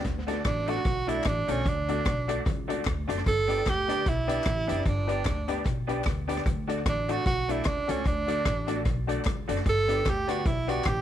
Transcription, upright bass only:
0.05 D2
0.45 A1
0.85 B1
1.26 A1
1.48 B1
1.66 D2
2.06 B1
2.46 C#2
2.87 D2
3.08 F#1
3.26 G1
3.67 D2
4.07 B1
4.46 A1
4.69 F#1
4.86 G1
5.26 D2
5.66 B1
6.06 D2
6.46 D2
6.86 A1
7.26 B1
7.66 C#2
7.89 C#2
8.06 D2
8.46 A1
8.86 B1
9.26 C#2
9.49 F#1
9.66 G1
10.06 D2
10.46 B1
10.86 A1

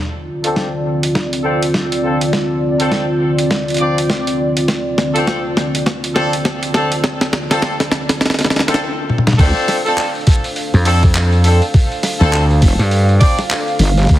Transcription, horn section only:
0.44 C4 D4 F4 A4
1.44 C4 D4 F4 A4
2.03 C4 D4 F4 A4
2.79 C4 D4 F4 A4
3.80 C4 D4 F4 D5
5.15 C4 D4 F4 A4
6.15 C4 D4 F4 A4
6.74 C4 D4 F4 A4
7.50 C4 D4 F4 A4
8.68 C4 D4 F4 A4
9.38 C4 D4 F4 A4
9.85 C4 D4 F4 A4
10.85 C4 D4 F4 A4
11.44 C4 D4 F4 A4
12.20 C4 D4 F4 A4
13.20 C4 D4 F4 D5

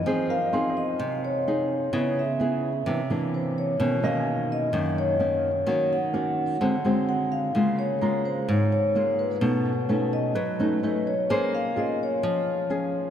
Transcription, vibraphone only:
Already playing: D#5
0.30 F5
0.77 D#5
1.25 C#5
1.95 C#5
2.19 E5
3.34 C5
3.58 C#5
4.05 F5
4.52 D#5
4.98 C#5
5.70 C#5
5.93 F#5
7.09 F#5
7.32 F5
7.79 C#5
8.25 C5
8.49 C#5
8.72 C#5
9.19 B4
9.90 B4
10.13 D#5
10.84 B4
11.07 C#5
11.55 F5
11.79 D#5
12.03 C#5

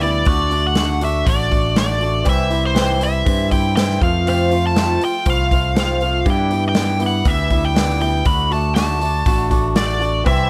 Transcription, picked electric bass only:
Already playing: D2
0.26 D2
1.27 A1
2.26 C2
3.27 G2
4.02 F2
5.27 C2
6.26 G2
7.25 D2
8.26 D2
9.26 A1
10.26 C2

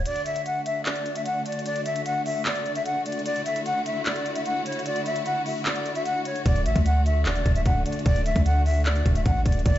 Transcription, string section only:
0.06 D3 A3 D4 F#4
3.26 E4
6.46 D3 A3 D4
9.66 E4 F#4

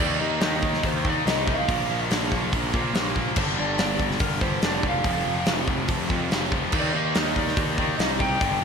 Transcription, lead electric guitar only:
0.00 D5
0.20 D#5
0.44 D#5
0.86 C5
1.09 D5
1.27 D#5
1.48 F5
2.06 D#5
3.38 C5
3.59 D5
3.78 D5
4.20 A#4
4.41 C5
4.64 D5
4.88 F5
6.79 D5
6.96 D#5
7.19 D#5
7.38 D5
7.79 D5
7.97 D#5
8.20 G5

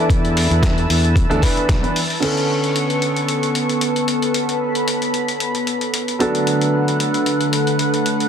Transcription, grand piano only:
Already playing: E3 B3 D4 A4
1.29 E3 B3 D4 A4
1.42 E3 B3 D4 B4
1.82 E3 B3 D4 B4
2.20 D3 B3 C#4 A4
6.19 F#3 B3 D4 A4

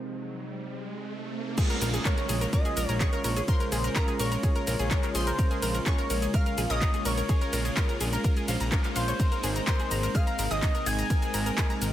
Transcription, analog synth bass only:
1.82 A#1
2.29 A#1
2.77 A#1
2.89 A#1
3.24 A#1
3.72 A#1
4.20 A#1
4.67 A#1
4.79 A#1
5.15 A#1
5.62 A#1
6.10 A#1
6.58 A#1
6.70 A#1
7.05 A#1
7.53 A#1
8.01 A#1
8.48 A#1
8.60 A#1
8.96 A#1
9.43 G#1
9.91 G#1
10.39 G#1
10.51 G#1
10.86 G#1
11.34 G#1
11.82 G#1

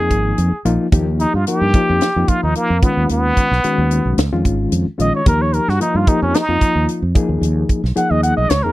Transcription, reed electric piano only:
Already playing: F3 A#3 D#4 G#4
0.65 F3 A#3 D#4 F4
0.92 F3 A#3 D#4 G4
1.48 F3 A#3 D#4 A#4
1.75 F3 A#3 D#4 G4
2.17 F3 A#3 D#4 F4
2.83 D#3 G#3 C#4 F4
3.64 D#3 G#3 C#4 F#4
4.33 D#3 G#3 C#4 F4
4.98 D#3 G#3 C#4 F4
5.26 F3 A#3 D#4 G4
5.81 F3 A#3 D#4 F4
6.07 F3 A#3 D#4 G4
6.49 F3 A#3 D#4 F4
7.15 F3 A#3 D#4 G#4
7.96 F3 A#3 D#4 G#4
8.64 F3 A#3 D#4 G#4

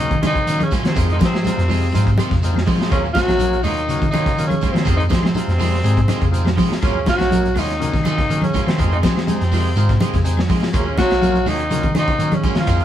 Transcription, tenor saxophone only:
Already playing: D#4
0.27 D#4
0.63 C#4
0.88 C4
1.12 D#4
1.25 C4
2.92 C#4
3.13 F#4
3.64 D#4
4.11 D#4
4.47 C#4
4.72 C4
4.97 D#4
5.11 C4
6.85 C#4
7.09 F#4
7.59 D#4
8.07 D#4
8.44 C#4
8.68 C4
8.93 D#4
9.05 C4
10.75 C#4
10.98 F#4
11.48 D#4
11.99 D#4
12.35 C#4
12.59 F4

